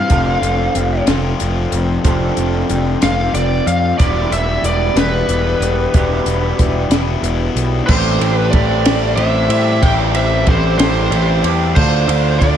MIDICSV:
0, 0, Header, 1, 8, 480
1, 0, Start_track
1, 0, Key_signature, 0, "minor"
1, 0, Tempo, 647249
1, 76, Time_signature, 6, 3, 24, 8
1, 9322, End_track
2, 0, Start_track
2, 0, Title_t, "Analog synth pad"
2, 0, Program_c, 0, 89
2, 82, Note_on_c, 0, 84, 86
2, 84, Note_on_c, 0, 74, 75
2, 2941, Note_off_c, 0, 84, 0
2, 2974, Note_on_c, 0, 67, 76
2, 2980, Note_on_c, 0, 76, 77
2, 2981, Note_on_c, 0, 83, 96
2, 5824, Note_off_c, 0, 67, 0
2, 5824, Note_off_c, 0, 74, 0
2, 5827, Note_off_c, 0, 76, 0
2, 5827, Note_off_c, 0, 83, 0
2, 5851, Note_on_c, 0, 81, 92
2, 5857, Note_on_c, 0, 67, 84
2, 5859, Note_on_c, 0, 76, 77
2, 8697, Note_off_c, 0, 67, 0
2, 8698, Note_off_c, 0, 76, 0
2, 8721, Note_on_c, 0, 74, 79
2, 8722, Note_on_c, 0, 65, 92
2, 8730, Note_on_c, 0, 69, 83
2, 9322, Note_off_c, 0, 65, 0
2, 9322, Note_off_c, 0, 69, 0
2, 9322, Note_off_c, 0, 74, 0
2, 9322, Note_off_c, 0, 81, 0
2, 9322, End_track
3, 0, Start_track
3, 0, Title_t, "Lead electric guitar"
3, 0, Program_c, 1, 29
3, 0, Note_on_c, 1, 77, 85
3, 777, Note_off_c, 1, 77, 0
3, 2252, Note_on_c, 1, 77, 94
3, 2481, Note_off_c, 1, 77, 0
3, 2484, Note_on_c, 1, 74, 80
3, 2718, Note_off_c, 1, 74, 0
3, 2727, Note_on_c, 1, 77, 85
3, 2951, Note_off_c, 1, 77, 0
3, 2954, Note_on_c, 1, 74, 69
3, 3194, Note_off_c, 1, 74, 0
3, 3211, Note_on_c, 1, 76, 79
3, 3443, Note_off_c, 1, 76, 0
3, 3453, Note_on_c, 1, 74, 87
3, 3682, Note_on_c, 1, 71, 85
3, 3684, Note_off_c, 1, 74, 0
3, 5097, Note_off_c, 1, 71, 0
3, 5836, Note_on_c, 1, 72, 93
3, 6192, Note_off_c, 1, 72, 0
3, 6192, Note_on_c, 1, 71, 93
3, 6307, Note_on_c, 1, 74, 96
3, 6337, Note_off_c, 1, 71, 0
3, 6791, Note_off_c, 1, 74, 0
3, 6794, Note_on_c, 1, 76, 110
3, 7048, Note_off_c, 1, 76, 0
3, 7055, Note_on_c, 1, 76, 94
3, 7285, Note_on_c, 1, 79, 102
3, 7298, Note_off_c, 1, 76, 0
3, 7350, Note_off_c, 1, 79, 0
3, 7533, Note_on_c, 1, 76, 94
3, 7752, Note_off_c, 1, 76, 0
3, 7777, Note_on_c, 1, 72, 94
3, 7987, Note_off_c, 1, 72, 0
3, 7996, Note_on_c, 1, 72, 103
3, 8508, Note_off_c, 1, 72, 0
3, 8723, Note_on_c, 1, 72, 88
3, 9170, Note_off_c, 1, 72, 0
3, 9188, Note_on_c, 1, 74, 101
3, 9322, Note_off_c, 1, 74, 0
3, 9322, End_track
4, 0, Start_track
4, 0, Title_t, "Tine electric piano"
4, 0, Program_c, 2, 4
4, 5844, Note_on_c, 2, 69, 78
4, 6296, Note_off_c, 2, 69, 0
4, 6318, Note_on_c, 2, 69, 88
4, 6773, Note_off_c, 2, 69, 0
4, 6807, Note_on_c, 2, 72, 89
4, 7030, Note_off_c, 2, 72, 0
4, 7042, Note_on_c, 2, 72, 83
4, 7267, Note_off_c, 2, 72, 0
4, 7287, Note_on_c, 2, 76, 89
4, 7394, Note_off_c, 2, 76, 0
4, 7533, Note_on_c, 2, 72, 93
4, 7752, Note_off_c, 2, 72, 0
4, 7779, Note_on_c, 2, 69, 83
4, 7995, Note_off_c, 2, 69, 0
4, 8007, Note_on_c, 2, 69, 77
4, 8514, Note_off_c, 2, 69, 0
4, 8732, Note_on_c, 2, 69, 74
4, 9175, Note_off_c, 2, 69, 0
4, 9207, Note_on_c, 2, 69, 88
4, 9322, Note_off_c, 2, 69, 0
4, 9322, End_track
5, 0, Start_track
5, 0, Title_t, "Clean electric guitar"
5, 0, Program_c, 3, 27
5, 71, Note_on_c, 3, 62, 92
5, 77, Note_on_c, 3, 69, 99
5, 1508, Note_off_c, 3, 69, 0
5, 1520, Note_off_c, 3, 62, 0
5, 1523, Note_on_c, 3, 62, 90
5, 1526, Note_on_c, 3, 69, 103
5, 2954, Note_off_c, 3, 69, 0
5, 2960, Note_off_c, 3, 62, 0
5, 2963, Note_on_c, 3, 62, 86
5, 2966, Note_on_c, 3, 67, 93
5, 4393, Note_off_c, 3, 62, 0
5, 4416, Note_off_c, 3, 67, 0
5, 4419, Note_on_c, 3, 62, 95
5, 4419, Note_on_c, 3, 67, 95
5, 5839, Note_off_c, 3, 62, 0
5, 5840, Note_off_c, 3, 67, 0
5, 5852, Note_on_c, 3, 55, 103
5, 5857, Note_on_c, 3, 67, 116
5, 6081, Note_off_c, 3, 67, 0
5, 6084, Note_on_c, 3, 67, 71
5, 6093, Note_off_c, 3, 55, 0
5, 6096, Note_on_c, 3, 55, 60
5, 6319, Note_off_c, 3, 55, 0
5, 6322, Note_on_c, 3, 55, 82
5, 6328, Note_off_c, 3, 67, 0
5, 6331, Note_on_c, 3, 67, 91
5, 6548, Note_off_c, 3, 67, 0
5, 6557, Note_on_c, 3, 67, 86
5, 6563, Note_off_c, 3, 55, 0
5, 6572, Note_on_c, 3, 55, 64
5, 6791, Note_off_c, 3, 55, 0
5, 6800, Note_off_c, 3, 67, 0
5, 6800, Note_on_c, 3, 55, 89
5, 6809, Note_on_c, 3, 67, 78
5, 7029, Note_off_c, 3, 67, 0
5, 7037, Note_on_c, 3, 67, 80
5, 7039, Note_off_c, 3, 55, 0
5, 7042, Note_on_c, 3, 60, 72
5, 7048, Note_on_c, 3, 55, 74
5, 7278, Note_off_c, 3, 55, 0
5, 7281, Note_off_c, 3, 60, 0
5, 7284, Note_off_c, 3, 67, 0
5, 7287, Note_on_c, 3, 55, 102
5, 7293, Note_on_c, 3, 67, 107
5, 7510, Note_off_c, 3, 67, 0
5, 7519, Note_on_c, 3, 67, 66
5, 7529, Note_off_c, 3, 55, 0
5, 7538, Note_on_c, 3, 55, 64
5, 7757, Note_off_c, 3, 55, 0
5, 7761, Note_off_c, 3, 67, 0
5, 7766, Note_on_c, 3, 55, 80
5, 7770, Note_on_c, 3, 67, 87
5, 7990, Note_off_c, 3, 67, 0
5, 7999, Note_on_c, 3, 67, 83
5, 8007, Note_off_c, 3, 55, 0
5, 8016, Note_on_c, 3, 55, 69
5, 8232, Note_off_c, 3, 55, 0
5, 8240, Note_off_c, 3, 67, 0
5, 8241, Note_on_c, 3, 55, 79
5, 8249, Note_on_c, 3, 67, 92
5, 8472, Note_off_c, 3, 67, 0
5, 8481, Note_on_c, 3, 67, 82
5, 8482, Note_off_c, 3, 55, 0
5, 8485, Note_on_c, 3, 60, 75
5, 8491, Note_on_c, 3, 55, 66
5, 8706, Note_off_c, 3, 67, 0
5, 8708, Note_off_c, 3, 60, 0
5, 8710, Note_off_c, 3, 55, 0
5, 9322, End_track
6, 0, Start_track
6, 0, Title_t, "Overdriven electric guitar"
6, 0, Program_c, 4, 29
6, 0, Note_on_c, 4, 60, 70
6, 67, Note_on_c, 4, 41, 88
6, 70, Note_on_c, 4, 48, 89
6, 72, Note_on_c, 4, 53, 85
6, 76, Note_on_c, 4, 57, 83
6, 79, Note_off_c, 4, 60, 0
6, 82, Note_on_c, 4, 60, 80
6, 86, Note_on_c, 4, 65, 86
6, 782, Note_off_c, 4, 48, 0
6, 784, Note_off_c, 4, 65, 0
6, 787, Note_on_c, 4, 65, 81
6, 790, Note_off_c, 4, 60, 0
6, 792, Note_off_c, 4, 57, 0
6, 793, Note_on_c, 4, 60, 75
6, 795, Note_on_c, 4, 57, 75
6, 800, Note_off_c, 4, 53, 0
6, 803, Note_on_c, 4, 53, 78
6, 804, Note_off_c, 4, 41, 0
6, 805, Note_on_c, 4, 48, 59
6, 807, Note_on_c, 4, 41, 66
6, 1502, Note_off_c, 4, 65, 0
6, 1505, Note_off_c, 4, 41, 0
6, 1505, Note_off_c, 4, 60, 0
6, 1506, Note_off_c, 4, 57, 0
6, 1510, Note_off_c, 4, 53, 0
6, 1511, Note_off_c, 4, 48, 0
6, 1514, Note_on_c, 4, 41, 80
6, 1521, Note_on_c, 4, 48, 84
6, 1523, Note_on_c, 4, 53, 86
6, 1527, Note_on_c, 4, 57, 89
6, 1531, Note_on_c, 4, 60, 99
6, 1534, Note_on_c, 4, 65, 96
6, 2226, Note_off_c, 4, 41, 0
6, 2226, Note_off_c, 4, 65, 0
6, 2229, Note_off_c, 4, 60, 0
6, 2230, Note_off_c, 4, 48, 0
6, 2231, Note_off_c, 4, 53, 0
6, 2233, Note_off_c, 4, 57, 0
6, 2235, Note_on_c, 4, 65, 85
6, 2238, Note_on_c, 4, 60, 73
6, 2243, Note_on_c, 4, 57, 64
6, 2249, Note_on_c, 4, 53, 69
6, 2251, Note_on_c, 4, 48, 71
6, 2259, Note_on_c, 4, 41, 68
6, 2948, Note_off_c, 4, 65, 0
6, 2949, Note_off_c, 4, 41, 0
6, 2949, Note_off_c, 4, 60, 0
6, 2952, Note_off_c, 4, 57, 0
6, 2952, Note_on_c, 4, 40, 80
6, 2953, Note_off_c, 4, 48, 0
6, 2955, Note_off_c, 4, 53, 0
6, 2956, Note_on_c, 4, 47, 83
6, 2962, Note_on_c, 4, 52, 83
6, 2965, Note_on_c, 4, 55, 94
6, 2969, Note_on_c, 4, 59, 97
6, 2974, Note_on_c, 4, 64, 95
6, 3669, Note_off_c, 4, 47, 0
6, 3675, Note_off_c, 4, 64, 0
6, 3678, Note_on_c, 4, 64, 75
6, 3681, Note_off_c, 4, 59, 0
6, 3683, Note_off_c, 4, 55, 0
6, 3684, Note_on_c, 4, 59, 76
6, 3686, Note_on_c, 4, 55, 77
6, 3688, Note_off_c, 4, 52, 0
6, 3691, Note_on_c, 4, 52, 67
6, 3696, Note_off_c, 4, 40, 0
6, 3696, Note_on_c, 4, 47, 80
6, 3699, Note_on_c, 4, 40, 69
6, 4393, Note_off_c, 4, 59, 0
6, 4395, Note_off_c, 4, 40, 0
6, 4399, Note_off_c, 4, 47, 0
6, 4404, Note_on_c, 4, 40, 90
6, 4410, Note_on_c, 4, 47, 88
6, 4413, Note_off_c, 4, 52, 0
6, 4416, Note_off_c, 4, 55, 0
6, 4416, Note_on_c, 4, 52, 82
6, 4419, Note_on_c, 4, 55, 95
6, 4422, Note_off_c, 4, 64, 0
6, 4422, Note_on_c, 4, 59, 88
6, 4425, Note_on_c, 4, 64, 96
6, 5113, Note_off_c, 4, 40, 0
6, 5114, Note_off_c, 4, 64, 0
6, 5115, Note_off_c, 4, 47, 0
6, 5119, Note_off_c, 4, 52, 0
6, 5120, Note_off_c, 4, 55, 0
6, 5122, Note_off_c, 4, 59, 0
6, 5123, Note_on_c, 4, 64, 90
6, 5129, Note_on_c, 4, 59, 72
6, 5134, Note_on_c, 4, 52, 68
6, 5135, Note_on_c, 4, 55, 71
6, 5138, Note_on_c, 4, 47, 75
6, 5143, Note_on_c, 4, 40, 62
6, 5831, Note_off_c, 4, 64, 0
6, 5835, Note_off_c, 4, 59, 0
6, 5837, Note_off_c, 4, 52, 0
6, 5837, Note_off_c, 4, 55, 0
6, 5838, Note_off_c, 4, 47, 0
6, 5841, Note_off_c, 4, 40, 0
6, 5841, Note_on_c, 4, 45, 90
6, 5846, Note_on_c, 4, 52, 99
6, 5852, Note_on_c, 4, 57, 86
6, 5853, Note_on_c, 4, 60, 93
6, 5860, Note_on_c, 4, 64, 98
6, 6084, Note_off_c, 4, 64, 0
6, 6087, Note_on_c, 4, 64, 82
6, 6089, Note_off_c, 4, 60, 0
6, 6092, Note_on_c, 4, 60, 65
6, 6098, Note_off_c, 4, 57, 0
6, 6101, Note_on_c, 4, 57, 65
6, 6313, Note_off_c, 4, 52, 0
6, 6316, Note_on_c, 4, 52, 76
6, 6322, Note_off_c, 4, 57, 0
6, 6325, Note_on_c, 4, 57, 80
6, 6327, Note_off_c, 4, 60, 0
6, 6330, Note_on_c, 4, 60, 83
6, 6337, Note_off_c, 4, 64, 0
6, 6339, Note_on_c, 4, 64, 78
6, 6555, Note_off_c, 4, 64, 0
6, 6560, Note_off_c, 4, 60, 0
6, 6564, Note_on_c, 4, 64, 91
6, 6569, Note_on_c, 4, 60, 84
6, 6571, Note_off_c, 4, 52, 0
6, 6572, Note_off_c, 4, 57, 0
6, 6575, Note_on_c, 4, 57, 75
6, 6579, Note_on_c, 4, 52, 81
6, 6582, Note_off_c, 4, 45, 0
6, 6585, Note_on_c, 4, 45, 76
6, 6791, Note_off_c, 4, 52, 0
6, 6800, Note_on_c, 4, 52, 74
6, 6806, Note_off_c, 4, 57, 0
6, 6806, Note_off_c, 4, 60, 0
6, 6808, Note_on_c, 4, 57, 74
6, 6811, Note_off_c, 4, 64, 0
6, 6815, Note_on_c, 4, 60, 85
6, 6820, Note_on_c, 4, 64, 74
6, 7056, Note_off_c, 4, 45, 0
6, 7275, Note_off_c, 4, 52, 0
6, 7275, Note_on_c, 4, 45, 86
6, 7283, Note_off_c, 4, 57, 0
6, 7283, Note_on_c, 4, 52, 86
6, 7284, Note_off_c, 4, 60, 0
6, 7286, Note_off_c, 4, 64, 0
6, 7286, Note_on_c, 4, 57, 90
6, 7293, Note_on_c, 4, 60, 99
6, 7295, Note_on_c, 4, 64, 105
6, 7506, Note_off_c, 4, 64, 0
6, 7515, Note_on_c, 4, 64, 78
6, 7516, Note_off_c, 4, 60, 0
6, 7525, Note_on_c, 4, 60, 72
6, 7528, Note_off_c, 4, 57, 0
6, 7531, Note_on_c, 4, 57, 65
6, 7745, Note_off_c, 4, 52, 0
6, 7754, Note_on_c, 4, 52, 83
6, 7756, Note_off_c, 4, 57, 0
6, 7756, Note_off_c, 4, 60, 0
6, 7759, Note_off_c, 4, 45, 0
6, 7759, Note_on_c, 4, 57, 70
6, 7765, Note_off_c, 4, 64, 0
6, 7765, Note_on_c, 4, 60, 83
6, 7774, Note_on_c, 4, 64, 80
6, 7995, Note_off_c, 4, 64, 0
6, 7998, Note_off_c, 4, 60, 0
6, 8004, Note_on_c, 4, 64, 84
6, 8007, Note_on_c, 4, 60, 84
6, 8009, Note_off_c, 4, 52, 0
6, 8010, Note_off_c, 4, 57, 0
6, 8013, Note_on_c, 4, 57, 81
6, 8018, Note_on_c, 4, 52, 82
6, 8020, Note_on_c, 4, 45, 71
6, 8228, Note_off_c, 4, 52, 0
6, 8237, Note_on_c, 4, 52, 65
6, 8241, Note_off_c, 4, 57, 0
6, 8244, Note_off_c, 4, 60, 0
6, 8244, Note_on_c, 4, 57, 80
6, 8248, Note_off_c, 4, 64, 0
6, 8253, Note_on_c, 4, 60, 89
6, 8257, Note_on_c, 4, 64, 77
6, 8491, Note_off_c, 4, 45, 0
6, 8704, Note_off_c, 4, 52, 0
6, 8712, Note_off_c, 4, 60, 0
6, 8712, Note_on_c, 4, 50, 92
6, 8714, Note_off_c, 4, 64, 0
6, 8715, Note_off_c, 4, 57, 0
6, 8718, Note_on_c, 4, 57, 99
6, 8724, Note_on_c, 4, 62, 100
6, 8729, Note_on_c, 4, 65, 94
6, 8954, Note_off_c, 4, 65, 0
6, 8957, Note_on_c, 4, 65, 82
6, 8965, Note_off_c, 4, 62, 0
6, 8968, Note_on_c, 4, 62, 69
6, 8975, Note_off_c, 4, 57, 0
6, 8978, Note_on_c, 4, 57, 58
6, 9185, Note_off_c, 4, 50, 0
6, 9188, Note_on_c, 4, 50, 78
6, 9195, Note_off_c, 4, 57, 0
6, 9196, Note_off_c, 4, 62, 0
6, 9198, Note_on_c, 4, 57, 75
6, 9199, Note_on_c, 4, 62, 83
6, 9203, Note_off_c, 4, 65, 0
6, 9206, Note_on_c, 4, 65, 93
6, 9322, Note_off_c, 4, 50, 0
6, 9322, Note_off_c, 4, 57, 0
6, 9322, Note_off_c, 4, 62, 0
6, 9322, Note_off_c, 4, 65, 0
6, 9322, End_track
7, 0, Start_track
7, 0, Title_t, "Picked electric bass"
7, 0, Program_c, 5, 34
7, 76, Note_on_c, 5, 29, 94
7, 261, Note_off_c, 5, 29, 0
7, 308, Note_on_c, 5, 29, 77
7, 496, Note_off_c, 5, 29, 0
7, 557, Note_on_c, 5, 29, 78
7, 742, Note_off_c, 5, 29, 0
7, 794, Note_on_c, 5, 29, 95
7, 981, Note_off_c, 5, 29, 0
7, 1046, Note_on_c, 5, 29, 82
7, 1229, Note_off_c, 5, 29, 0
7, 1275, Note_on_c, 5, 29, 82
7, 1462, Note_off_c, 5, 29, 0
7, 1516, Note_on_c, 5, 29, 89
7, 1703, Note_off_c, 5, 29, 0
7, 1759, Note_on_c, 5, 29, 77
7, 1945, Note_off_c, 5, 29, 0
7, 2001, Note_on_c, 5, 29, 90
7, 2187, Note_off_c, 5, 29, 0
7, 2241, Note_on_c, 5, 29, 89
7, 2427, Note_off_c, 5, 29, 0
7, 2473, Note_on_c, 5, 29, 81
7, 2662, Note_off_c, 5, 29, 0
7, 2719, Note_on_c, 5, 41, 76
7, 2906, Note_off_c, 5, 41, 0
7, 2963, Note_on_c, 5, 28, 89
7, 3149, Note_off_c, 5, 28, 0
7, 3195, Note_on_c, 5, 28, 79
7, 3384, Note_off_c, 5, 28, 0
7, 3434, Note_on_c, 5, 28, 93
7, 3624, Note_off_c, 5, 28, 0
7, 3673, Note_on_c, 5, 28, 91
7, 3863, Note_off_c, 5, 28, 0
7, 3917, Note_on_c, 5, 28, 90
7, 4105, Note_off_c, 5, 28, 0
7, 4151, Note_on_c, 5, 28, 89
7, 4342, Note_off_c, 5, 28, 0
7, 4406, Note_on_c, 5, 28, 96
7, 4591, Note_off_c, 5, 28, 0
7, 4640, Note_on_c, 5, 28, 83
7, 4828, Note_off_c, 5, 28, 0
7, 4888, Note_on_c, 5, 28, 88
7, 5072, Note_off_c, 5, 28, 0
7, 5115, Note_on_c, 5, 28, 100
7, 5304, Note_off_c, 5, 28, 0
7, 5356, Note_on_c, 5, 28, 86
7, 5545, Note_off_c, 5, 28, 0
7, 5601, Note_on_c, 5, 35, 84
7, 5788, Note_off_c, 5, 35, 0
7, 5849, Note_on_c, 5, 33, 100
7, 6073, Note_off_c, 5, 33, 0
7, 6081, Note_on_c, 5, 33, 87
7, 6310, Note_off_c, 5, 33, 0
7, 6331, Note_on_c, 5, 33, 98
7, 6779, Note_off_c, 5, 33, 0
7, 6795, Note_on_c, 5, 33, 88
7, 7026, Note_off_c, 5, 33, 0
7, 7038, Note_on_c, 5, 45, 91
7, 7267, Note_off_c, 5, 45, 0
7, 7290, Note_on_c, 5, 33, 89
7, 7737, Note_off_c, 5, 33, 0
7, 7768, Note_on_c, 5, 33, 94
7, 7991, Note_off_c, 5, 33, 0
7, 7996, Note_on_c, 5, 33, 100
7, 8224, Note_off_c, 5, 33, 0
7, 8233, Note_on_c, 5, 33, 95
7, 8462, Note_off_c, 5, 33, 0
7, 8479, Note_on_c, 5, 40, 78
7, 8705, Note_off_c, 5, 40, 0
7, 8724, Note_on_c, 5, 38, 95
7, 8947, Note_off_c, 5, 38, 0
7, 8955, Note_on_c, 5, 38, 90
7, 9182, Note_off_c, 5, 38, 0
7, 9206, Note_on_c, 5, 38, 92
7, 9322, Note_off_c, 5, 38, 0
7, 9322, End_track
8, 0, Start_track
8, 0, Title_t, "Drums"
8, 72, Note_on_c, 9, 42, 82
8, 76, Note_on_c, 9, 36, 99
8, 146, Note_off_c, 9, 42, 0
8, 150, Note_off_c, 9, 36, 0
8, 319, Note_on_c, 9, 42, 64
8, 393, Note_off_c, 9, 42, 0
8, 557, Note_on_c, 9, 42, 68
8, 631, Note_off_c, 9, 42, 0
8, 793, Note_on_c, 9, 42, 103
8, 798, Note_on_c, 9, 38, 109
8, 867, Note_off_c, 9, 42, 0
8, 872, Note_off_c, 9, 38, 0
8, 1037, Note_on_c, 9, 42, 70
8, 1111, Note_off_c, 9, 42, 0
8, 1276, Note_on_c, 9, 42, 64
8, 1350, Note_off_c, 9, 42, 0
8, 1517, Note_on_c, 9, 42, 95
8, 1519, Note_on_c, 9, 36, 102
8, 1591, Note_off_c, 9, 42, 0
8, 1593, Note_off_c, 9, 36, 0
8, 1756, Note_on_c, 9, 42, 67
8, 1830, Note_off_c, 9, 42, 0
8, 1998, Note_on_c, 9, 42, 65
8, 2073, Note_off_c, 9, 42, 0
8, 2238, Note_on_c, 9, 42, 92
8, 2243, Note_on_c, 9, 38, 108
8, 2312, Note_off_c, 9, 42, 0
8, 2317, Note_off_c, 9, 38, 0
8, 2481, Note_on_c, 9, 42, 68
8, 2555, Note_off_c, 9, 42, 0
8, 2724, Note_on_c, 9, 42, 64
8, 2798, Note_off_c, 9, 42, 0
8, 2962, Note_on_c, 9, 42, 81
8, 2965, Note_on_c, 9, 36, 99
8, 3036, Note_off_c, 9, 42, 0
8, 3039, Note_off_c, 9, 36, 0
8, 3206, Note_on_c, 9, 42, 67
8, 3280, Note_off_c, 9, 42, 0
8, 3443, Note_on_c, 9, 42, 69
8, 3517, Note_off_c, 9, 42, 0
8, 3683, Note_on_c, 9, 42, 92
8, 3688, Note_on_c, 9, 38, 102
8, 3757, Note_off_c, 9, 42, 0
8, 3762, Note_off_c, 9, 38, 0
8, 3922, Note_on_c, 9, 42, 68
8, 3996, Note_off_c, 9, 42, 0
8, 4169, Note_on_c, 9, 42, 64
8, 4243, Note_off_c, 9, 42, 0
8, 4404, Note_on_c, 9, 42, 81
8, 4408, Note_on_c, 9, 36, 110
8, 4479, Note_off_c, 9, 42, 0
8, 4482, Note_off_c, 9, 36, 0
8, 4643, Note_on_c, 9, 42, 72
8, 4717, Note_off_c, 9, 42, 0
8, 4888, Note_on_c, 9, 42, 79
8, 4889, Note_on_c, 9, 36, 76
8, 4962, Note_off_c, 9, 42, 0
8, 4963, Note_off_c, 9, 36, 0
8, 5123, Note_on_c, 9, 42, 94
8, 5128, Note_on_c, 9, 38, 116
8, 5197, Note_off_c, 9, 42, 0
8, 5203, Note_off_c, 9, 38, 0
8, 5367, Note_on_c, 9, 42, 81
8, 5442, Note_off_c, 9, 42, 0
8, 5611, Note_on_c, 9, 42, 74
8, 5685, Note_off_c, 9, 42, 0
8, 5847, Note_on_c, 9, 49, 113
8, 5851, Note_on_c, 9, 36, 104
8, 5921, Note_off_c, 9, 49, 0
8, 5925, Note_off_c, 9, 36, 0
8, 6091, Note_on_c, 9, 51, 77
8, 6165, Note_off_c, 9, 51, 0
8, 6324, Note_on_c, 9, 51, 84
8, 6329, Note_on_c, 9, 36, 89
8, 6398, Note_off_c, 9, 51, 0
8, 6404, Note_off_c, 9, 36, 0
8, 6567, Note_on_c, 9, 51, 99
8, 6572, Note_on_c, 9, 38, 122
8, 6641, Note_off_c, 9, 51, 0
8, 6646, Note_off_c, 9, 38, 0
8, 6803, Note_on_c, 9, 51, 76
8, 6877, Note_off_c, 9, 51, 0
8, 7045, Note_on_c, 9, 51, 79
8, 7119, Note_off_c, 9, 51, 0
8, 7287, Note_on_c, 9, 36, 106
8, 7287, Note_on_c, 9, 51, 102
8, 7361, Note_off_c, 9, 36, 0
8, 7361, Note_off_c, 9, 51, 0
8, 7524, Note_on_c, 9, 51, 72
8, 7598, Note_off_c, 9, 51, 0
8, 7761, Note_on_c, 9, 51, 77
8, 7766, Note_on_c, 9, 36, 86
8, 7836, Note_off_c, 9, 51, 0
8, 7840, Note_off_c, 9, 36, 0
8, 8004, Note_on_c, 9, 51, 108
8, 8009, Note_on_c, 9, 38, 121
8, 8078, Note_off_c, 9, 51, 0
8, 8083, Note_off_c, 9, 38, 0
8, 8246, Note_on_c, 9, 51, 81
8, 8321, Note_off_c, 9, 51, 0
8, 8484, Note_on_c, 9, 51, 77
8, 8559, Note_off_c, 9, 51, 0
8, 8722, Note_on_c, 9, 49, 103
8, 8724, Note_on_c, 9, 36, 117
8, 8797, Note_off_c, 9, 49, 0
8, 8798, Note_off_c, 9, 36, 0
8, 8966, Note_on_c, 9, 51, 86
8, 9040, Note_off_c, 9, 51, 0
8, 9205, Note_on_c, 9, 36, 79
8, 9207, Note_on_c, 9, 51, 83
8, 9279, Note_off_c, 9, 36, 0
8, 9281, Note_off_c, 9, 51, 0
8, 9322, End_track
0, 0, End_of_file